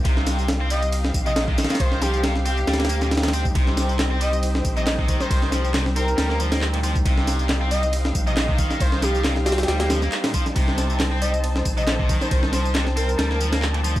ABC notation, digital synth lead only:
X:1
M:4/4
L:1/16
Q:"Swing 16ths" 1/4=137
K:Cdor
V:1 name="Digital synth lead"
z6 e z4 e z4 | c c G G z2 G4 z6 | z6 e z4 e z3 c | c z4 z B4 z6 |
z6 e z4 e z4 | c c G G z2 G4 z6 | z6 e z4 e z3 c | c z4 z B4 z6 |]